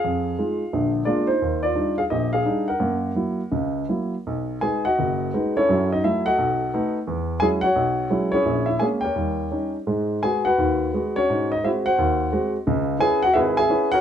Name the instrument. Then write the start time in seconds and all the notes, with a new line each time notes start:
grand piano
Already playing: G#4 F5
0.04 F2
0.39 G#3 D#4 F4
0.73 A#1 D3
1.05 G#3 A#3 D4 F4 D5
1.27 D#4 C5
1.42 D#2
1.63 F4 D5
1.75 G3 D4 D#4
1.98 G#4 F5
2.10 A#1 G4 D#5
2.33 G#4 F5
2.45 G3 D4 D#4
2.68 A#4 F#5
2.80 F#2 A#3
3.15 F#3 A#3 E4
3.52 C#2 C#3
3.89 F#3 A#3 E4
4.27 B1
4.61 G#3 B3 D#4 G#4 G#5
4.85 F#4 D#5 F#5
4.99 F#1
5.34 G#3 B3 D#4
5.57 C#4 E4 A4 C#5
5.69 F#2 F#3
5.92 D#4 D#5
6.04 F#3 A3 E4 E5
6.26 F#4 A4 D#5 F#5
6.39 B1
6.74 A3 B3 D#4
7.07 E2
7.40 F#3 G#3 C#4 E4 G#4 G#5
7.61 F#4 C#5 F#5
7.76 B1
8.10 F#3 G#3 C#4 E4
8.32 C#4 E4 G#4 C#5
8.46 A#1
8.66 E4 E5
8.79 G#3 A#3 C#4 G#4 G#5
9.01 G4 A#4 C#5 G5
9.15 D#2 G3
9.51 G3 C#4 D#4
9.87 G#2 G#3
10.23 G#3 B3 F#4 G#4 G#5
10.45 F#4 B4 F#5
10.58 D#2 D#3
10.94 G#3 B3 F#4
11.16 C#4 F#4 C#5
11.30 G#2
11.52 D#4 D#5
11.64 G#3 C4 E4 F#4 E5
11.86 F#4 C5 F#5
11.98 D#2
12.33 G#3 C4 F#4
12.67 C#2 C#3
12.99 B3 C#4 E4 G#4 G#5
13.23 F#4 F#5
13.34 G#1 E4 G#4 B4 E5
13.57 G#4 E5 G#5
13.70 B3 C#4 E4
13.92 F#4 A#4 C#5 F#5